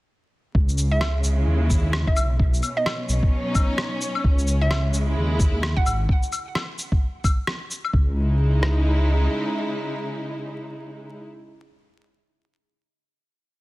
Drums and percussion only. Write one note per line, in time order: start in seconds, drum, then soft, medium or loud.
0.55 kick loud
0.69 shaker soft
0.78 shaker medium
1.01 cross-stick loud
1.01 claves medium
1.24 shaker medium
1.70 kick loud
1.70 shaker medium
1.93 cross-stick loud
2.07 kick loud
2.16 claves medium
2.16 shaker medium
2.40 kick loud
2.54 shaker soft
2.63 claves soft
2.63 shaker medium
2.86 cross-stick loud
2.86 claves medium
3.09 shaker medium
3.23 kick loud
3.55 kick loud
3.55 claves soft
3.55 shaker medium
3.78 cross-stick loud
4.01 shaker medium
4.15 claves soft
4.24 kick loud
4.39 shaker soft
4.47 shaker medium
4.71 cross-stick loud
4.71 claves medium
4.94 shaker medium
5.40 kick loud
5.40 shaker medium
5.63 cross-stick loud
5.77 kick loud
5.86 claves medium
5.86 shaker medium
6.09 kick loud
6.23 shaker soft
6.32 claves soft
6.32 shaker medium
6.55 cross-stick loud
6.55 claves medium
6.78 shaker medium
6.92 kick loud
7.24 kick loud
7.24 claves soft
7.24 shaker soft
7.47 cross-stick loud
7.71 shaker medium
7.85 claves soft
7.93 kick loud
8.63 cross-stick medium